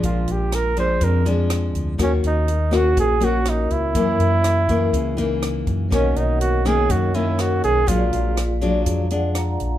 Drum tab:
HH |xxxxxxxx|xxxxxxxx|xxxxxxxx|xxxxxxxx|
SD |--r---r-|r--r--r-|--r---r-|r--r--r-|
BD |o---o---|o---o---|o--oo--o|o---o---|

HH |xxxxxxxx|
SD |--r---r-|
BD |o---o---|